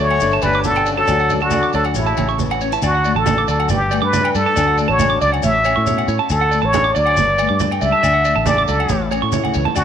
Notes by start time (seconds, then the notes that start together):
Already playing: D2 D3 F#3 A3
0.00 A3 D4 C#5
0.11 F#5, low agogo
0.20 G1 G2 G3 A3 D4 A4 D5, muted conga, shekere
0.31 A5, shekere
0.42 G1 G3 A3 B4 D5, muted conga, high conga, low agogo, shekere
0.53 D6, shekere
0.64 B2 D3 A4, high conga, shekere
0.75 G5, low agogo, shekere
0.86 C#3 D5, shekere
0.97 F#3 A4 A5
1.07 D2 D3 F#3 D4 F#4 D5, muted nylon-string guitar stroke, low agogo, shekere
1.19 F#5, shekere
1.30 A3 D5, low conga, shekere
1.40 D3 F#4 A5, shekere
1.51 F#3 D5, high conga, low agogo, shekere
1.62 D6, shekere
1.73 D2 F#3 D4 A4 D5, muted conga, shekere
1.84 F#5, low agogo, shekere
1.95 A1 A2 C#3 E4 C#5, muted conga, low conga, shekere
2.06 A5, shekere
2.17 A1 C#4 C#5, muted conga, high conga, low agogo, shekere
2.29 C#6, shekere
2.39 E3, high conga, shekere
2.51 F#5, low agogo, shekere
2.61 C#4 C#5, shekere
2.72 E4 A5, shekere
2.82 D2 D3 F#4 D5, muted conga, low agogo, shekere
2.95 F#5
3.04 A3 D5, shekere
3.15 A1 A4 A5
3.26 E3 D5, high conga, low agogo, shekere
3.38 D6
3.48 D2 F#3 A4 D5, muted conga, shekere
3.60 F#5, low agogo
3.69 G1 G2 G4 D5, muted conga, high conga, shekere
3.91 A3 D5, muted conga, low agogo, shekere
4.02 G2 B4 D6
4.13 D4 D5, high conga, shekere
4.24 G5, low agogo
4.35 G2 G3 A4 D5, shekere
4.46 A5
4.56 D2 D3 F#3 A3 D4 F#4 D5, muted conga, low agogo, shekere
4.68 F#5
4.78 A3 D5, shekere
4.88 A1 C#5 A5
4.99 D4 D5, high conga, low conga, low agogo, shekere
5.10 D6
5.21 C#2 F#3 D5, muted conga, shekere
5.32 F#5, low agogo
5.43 A1 A2 C#5 E5, muted conga, high conga, shekere
5.64 C#4 C#5, muted conga, low agogo, shekere
5.76 A2 C#6
5.87 B2 C#5, high conga, shekere
5.98 F#5, low agogo
6.08 A2 C#5, shekere
6.19 A5
6.29 D2 D3 A4, muted clean electric guitar stroke, low agogo, shekere
6.41 F#5
6.51 A3 D5, shekere
6.62 A1 C#5 A5
6.73 D4 D5, high conga, low agogo, shekere
6.84 D6
6.95 D2 F#3 D5, muted conga, shekere
7.06 F#5, low agogo
7.16 G1 G2 D5, muted conga, high conga, shekere
7.38 A3 D5, muted conga, low agogo, shekere
7.49 G2 D6
7.60 D4 D5, high conga, shekere
7.71 G5, low agogo
7.81 C#2 G3 D5 E5, shekere
7.92 A5
8.03 D2 D3 D5, low agogo, shekere
8.14 F#5
8.25 A3 D5, shekere
8.36 A1 A5
8.46 D5, muted nylon-string guitar stroke, high conga, low conga, low agogo, shekere
8.58 D6
8.67 C#2 F#3 A4 D5, muted conga, shekere
8.80 F#5, low agogo
8.89 A1 A2 C#5, muted conga, high conga, shekere
9.11 C#4 C#5, muted conga, low agogo, shekere
9.22 A2 C#6
9.32 E4 C#5, high conga, shekere
9.44 F#5, high conga, low agogo
9.54 C#2 E3 C#5, low conga, shekere
9.65 A5, low conga
9.76 D2 D3 F#4 D5, low agogo, shekere